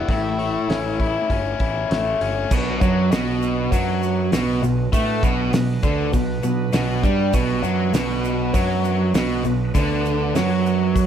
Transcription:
0.08 A1 A2 E4, kick, open hi-hat
0.38 A3, open hi-hat
0.68 A1 C#4, snare, open hi-hat
1.00 E4, kick, open hi-hat
1.30 G1 C#4, kick, open hi-hat
1.60 A1 E4, kick, open hi-hat
1.91 A1 A3, snare, open hi-hat
2.21 G1 C#4, open hi-hat
2.50 B1 B2 B3 D4 F#4 B4, kick, crash, shaker
2.81 F#2 F#3, kick, shaker
3.11 B1 B2, snare, open hi-hat, shaker
3.42 shaker
3.72 F#2 F#3, kick, open hi-hat, shaker
4.03 shaker
4.32 B1 B2, snare, open hi-hat, shaker
4.63 B1 B2, shaker
4.93 A2 A3 B3 D4 F#4 B4, kick, open hi-hat, shaker
5.23 B1 B2, kick, shaker
5.53 B1 B2, snare, open hi-hat, shaker
5.83 D2 D3, kick, shaker
6.13 B1 B2, kick, open hi-hat, shaker
6.43 B1 B2, shaker
6.73 B1 B2, snare, open hi-hat, shaker
7.03 G2 G3, kick, shaker
7.33 B1 B2 B3 D4 F#4 B4, kick, open hi-hat, shaker
7.63 F#2 F#3, shaker
7.93 B1 B2, snare, open hi-hat, shaker
8.25 shaker
8.54 F#2 F#3, kick, open hi-hat, shaker
8.84 shaker
9.14 B1 B2, snare, open hi-hat, shaker
9.44 B1 B2, shaker
9.75 D2 D3 B3 D4 F#4 B4, kick, open hi-hat, shaker
10.06 shaker
10.35 F#2 F#3, snare, open hi-hat, shaker
10.66 shaker
10.96 kick, open hi-hat, shaker

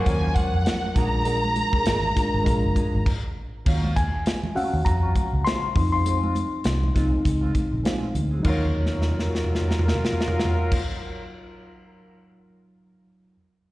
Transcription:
Already playing: F3 F#3 A#3 C#4 F4 A#4
0.06 D#2 F3 F#3 C#4 A#4 G#5, muted clean electric guitar stroke, kick, closed hi-hat, muted conga
0.35 C#4 F4 C5 F#5, kick, closed hi-hat, high conga
0.54 F2, muted clean electric guitar stroke
0.66 snare, closed hi-hat
0.82 muted clean electric guitar stroke, high conga
0.95 A#1 G#3 D4 F4 G#4 A#4 A#5, kick, snare, closed hi-hat, muted conga, low conga
1.13 muted clean electric guitar stroke
1.25 D4 G#4 A#4, closed hi-hat, muted conga
1.43 muted clean electric guitar stroke, high conga
1.56 muted clean electric guitar stroke, closed hi-hat, muted conga, high conga
1.72 D4 G#4 A#4, kick, high conga
1.84 G#1 D4 G#4 A#4, snare, closed hi-hat
2.03 high conga, low conga
2.14 G#3 D4 F4 A#4, muted clean electric guitar stroke, kick, snare, closed hi-hat, muted conga
2.32 G#1 D4 G#4 A#4
2.44 A#1 G#3 D4 F4 A#4, muted clean electric guitar stroke, kick, closed hi-hat, muted conga
2.64 F#1
2.75 D4 G#4 A#4, kick, closed hi-hat, muted conga, high conga
2.93 G#1, muted clean electric guitar stroke
3.06 kick, crash
3.65 D#2 F#3 C#4 F4, kick, crash, muted conga
3.84 high conga
3.96 G#5, kick, closed hi-hat, high conga
4.14 muted clean electric guitar stroke
4.26 muted clean electric guitar stroke, snare, closed hi-hat
4.43 muted clean electric guitar stroke, high conga, low conga
4.55 F#3 C#4 F4 F#4 F5 F#5, muted fingered electric bass stroke, open hi-hat, muted conga
4.73 D#2, muted clean electric guitar stroke
4.85 F2 A#5, muted clean electric guitar stroke, kick, closed hi-hat, muted conga
5.01 F#3 C#4 F4
5.15 muted clean electric guitar stroke, kick, closed hi-hat, muted conga, high conga
5.33 C#2, muted clean electric guitar stroke
5.45 F#3 C#4 F4 C6, snare, closed hi-hat, muted conga
5.63 high conga
5.74 F2 F3 C4 D#4, muted clean electric guitar stroke, kick, open hi-hat, muted conga, low conga
5.92 G#3 C4 F4 C6
6.05 G#3 C4 F4, closed hi-hat, muted conga
6.23 high conga
6.35 closed hi-hat, muted conga, high conga
6.52 muted clean electric guitar stroke
6.64 C2, muted clean electric guitar stroke, snare, closed hi-hat
6.82 muted clean electric guitar stroke, high conga, low conga
6.94 C2 F3 G#3 C4 D#4 F4, kick, snare, closed hi-hat, muted conga
7.12 muted clean electric guitar stroke
7.25 C#2, muted clean electric guitar stroke, kick, closed hi-hat, muted conga
7.41 G#3 C4 F4
7.54 muted clean electric guitar stroke, kick, closed hi-hat, muted conga, high conga
7.71 A#1, muted clean electric guitar stroke
7.83 G#3 C4 F4, snare, closed hi-hat, muted conga
8.03 high conga
8.15 D2, muted clean electric guitar stroke, closed hi-hat, low conga
8.31 G#3 C4 G#4
8.39 F#3 D#4
8.44 D#2 F#3 C#4 F4 A#4, kick, crash, high conga
8.50 C#5
8.75 floor tom
8.86 snare
8.94 floor tom
9.02 snare
9.09 floor tom
9.19 snare
9.27 floor tom
9.35 snare
9.44 floor tom
9.55 snare
9.61 floor tom
9.71 snare
9.79 floor tom
9.88 snare
9.94 floor tom
10.05 snare
10.13 floor tom
10.21 snare
10.28 floor tom
10.40 snare
10.45 floor tom
10.72 kick, crash

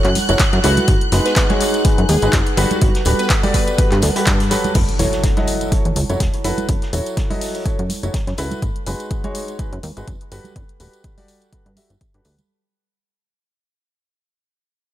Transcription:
Already playing: E4 C#5 F#5 A5 F#6
0.04 F#2, clap, closed hi-hat
0.15 closed hi-hat, open hi-hat, tambourine, high conga
0.29 F#1 F#3 E4 F#4 A4 C#5, closed hi-hat, tambourine
0.39 kick, snare, clap, closed hi-hat, tambourine
0.53 F#2, snare, closed hi-hat
0.64 C#2 E4 F#4 A4 B4, closed hi-hat, open hi-hat, tambourine
0.77 closed hi-hat, tambourine, high conga
0.88 G#1 D#4, kick, closed hi-hat, tambourine
1.01 B4, closed hi-hat
1.11 F#1 G#3 D#4 F#4 G#4 B4, snare, closed hi-hat, open hi-hat, tambourine
1.26 B4, snare, closed hi-hat, tambourine
1.36 B4 G#5, kick, snare, clap, closed hi-hat
1.50 G#3 D#4 F#4 G#4 C#5, snare, closed hi-hat, high conga
1.61 closed hi-hat, open hi-hat, tambourine
1.74 closed hi-hat, tambourine
1.85 G#3 D#4 F#4 G#4 B4, kick, closed hi-hat, tambourine
1.98 F#2, closed hi-hat
2.09 D#2 G#4, closed hi-hat, open hi-hat, tambourine, high conga
2.22 G#1 G#3 D#4 F#4 G#4 B4, closed hi-hat, tambourine
2.33 F#1, kick, snare, clap, closed hi-hat, tambourine
2.47 closed hi-hat
2.57 G1 G3 F#4 G4 A4 B4, closed hi-hat, open hi-hat, tambourine
2.71 closed hi-hat, tambourine, high conga
2.81 G1, kick, closed hi-hat, tambourine
2.95 snare, closed hi-hat
3.05 D1 G3 F#4 G4 A4 B4 A5, closed hi-hat, open hi-hat, tambourine
3.19 B4, closed hi-hat, tambourine
3.30 kick, snare, clap, closed hi-hat
3.43 G3 F#4 G4 A4 D5, open hi-hat, high conga
3.54 B4, kick, open hi-hat, tambourine
3.67 closed hi-hat, tambourine
3.78 G3 F#4 G4 A4 B4, kick, closed hi-hat, tambourine
3.91 G2, clap, closed hi-hat
4.02 D2, snare, closed hi-hat, open hi-hat, tambourine, high conga
4.16 G3 F#4 G4 A4 B4, closed hi-hat, tambourine
4.26 G2, kick, clap, closed hi-hat
4.40 snare, closed hi-hat
4.51 F#3 F#4 G4 A4 B4, closed hi-hat, open hi-hat, tambourine
4.64 closed hi-hat, tambourine, high conga
4.74 F#1 E4, kick, closed hi-hat, crash, tambourine, impact
4.83 C#5
4.89 closed hi-hat
4.99 E1 F#3 E4 F#4 A4 C#5, snare, closed hi-hat, open hi-hat, tambourine
5.12 snare, closed hi-hat, tambourine
5.24 kick, snare, closed hi-hat, tambourine
5.37 F#3 E4 F#4 A4 D#5, snare, closed hi-hat, high conga
5.47 closed hi-hat, open hi-hat, tambourine
5.61 closed hi-hat, tambourine
5.72 F#3 E4 F#4 A4 C#5, kick, closed hi-hat
5.85 E2, closed hi-hat
5.96 C#2, closed hi-hat, open hi-hat, tambourine, high conga
6.10 F#1 F#3 E4 F#4 A4 C#5, closed hi-hat, tambourine
6.20 E1, kick, snare, closed hi-hat, tambourine
6.33 closed hi-hat
6.44 F#1 F#3 E4 F#4 A4 B4, closed hi-hat, open hi-hat, tambourine
6.58 closed hi-hat, tambourine, high conga
6.69 F#1, kick, closed hi-hat, tambourine
6.82 snare, closed hi-hat
6.93 E1 F#3 E4 F#4 A4 C#5, closed hi-hat, open hi-hat, tambourine
7.06 closed hi-hat, tambourine
7.17 kick, snare, closed hi-hat
7.30 F#3 E4 F#4 A4 D#5, open hi-hat, high conga
7.41 open hi-hat, tambourine
7.55 closed hi-hat, tambourine
7.65 F#3 E4 F#4 A4 C#5, kick, closed hi-hat, tambourine
7.79 F#2, closed hi-hat
7.89 closed hi-hat, open hi-hat, tambourine, high conga
8.03 F#1 F#3 E4 F#4 A4 C#5, closed hi-hat, tambourine
8.14 kick, snare, closed hi-hat, tambourine
8.27 F#2, snare, closed hi-hat
8.38 C#2 E4 F#4 A4 B4, closed hi-hat, open hi-hat, tambourine
8.51 closed hi-hat, tambourine, high conga
8.62 G#1 D#4, kick, closed hi-hat, tambourine
8.71 B4
8.76 closed hi-hat
8.87 F#1 G#3 D#4 F#4 G#4 B4, open hi-hat, tambourine
9.00 closed hi-hat, tambourine
9.11 kick, closed hi-hat, tambourine
9.24 G#3 D#4 F#4 G#4 C#5, closed hi-hat, high conga
9.35 open hi-hat, tambourine
9.39 G#5
9.48 closed hi-hat, tambourine
9.59 G#3 D#4 F#4 G#4 B4, kick, closed hi-hat, tambourine
9.73 F#2, closed hi-hat
9.83 D#2, open hi-hat, tambourine, high conga
9.97 G#1 G#3 D#4 F#4 G#4 B4, closed hi-hat, tambourine
10.08 F#1, kick, closed hi-hat, tambourine
10.21 closed hi-hat
10.32 G1 G3 F#4 G4 A4 B4, open hi-hat, tambourine
10.44 closed hi-hat, tambourine, high conga
10.56 G1, kick, closed hi-hat
10.69 closed hi-hat
10.80 D1 G3 F#4 G4 A4 B4, open hi-hat, tambourine
10.93 closed hi-hat, tambourine
11.04 kick, closed hi-hat, tambourine
11.18 G3 F#4 G4 A4 D5, open hi-hat, high conga
11.28 A5, open hi-hat, tambourine
11.41 closed hi-hat, tambourine
11.53 G3 F#4 G4 A4 B4, kick, closed hi-hat, tambourine
11.66 G2, closed hi-hat
11.76 G3 F#4 G4 A4 E5, open hi-hat, tambourine, high conga
11.90 G1, closed hi-hat, tambourine
12.01 kick, closed hi-hat, tambourine
12.14 G2 G3 F#4 G4 A4 B4, closed hi-hat
12.25 D2, open hi-hat, tambourine
12.38 closed hi-hat, tambourine, high conga

